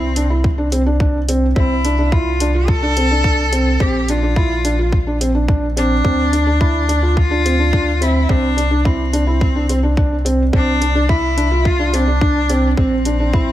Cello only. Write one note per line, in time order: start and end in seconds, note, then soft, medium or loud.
0.00 0.68 C4 loud
1.56 2.14 E4 loud
2.12 2.70 F4 loud
2.68 3.83 A4 loud
3.81 4.11 G4 loud
4.09 5.21 F4 loud
5.77 7.19 D4 loud
7.18 8.04 F4 loud
8.02 8.32 E4 loud
8.30 8.87 D4 loud
8.85 10.26 C4 medium
10.55 11.10 D4 loud
11.09 11.68 E4 loud
11.66 11.96 F4 loud
11.95 12.76 D4 loud
12.77 13.52 C4 loud